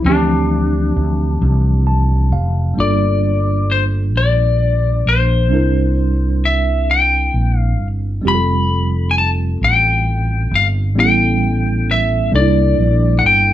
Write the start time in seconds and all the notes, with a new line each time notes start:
0.02 D2 F3 A3 C4 D4
0.08 E3 G4
0.96 D2
1.42 C2
1.87 A5
2.32 F1 F5
2.74 G1 G3 A#3 D4
2.79 F4 A4 D5
3.71 C5
4.15 A#1 D5
5.06 A#1 C5
5.48 C2 G3 C4 D4
5.53 E4 A#4
6.45 E5
6.91 G5
7.34 A#1
7.58 F5
7.79 G1
8.21 F1 G3 C4 G4
8.27 F4 G4 B5
8.35 A4
9.11 G#5
9.18 A5
9.61 A1 G5
10.51 G1
10.55 F5
10.95 A1 G3 B3 C#4 E4 G4
11.00 G5
11.05 A4
11.91 E5
12.31 C2 G3 A#3 D4 D#4 A4
12.36 D5
12.40 E4
12.79 A#1
13.19 F#5
13.24 G1 G5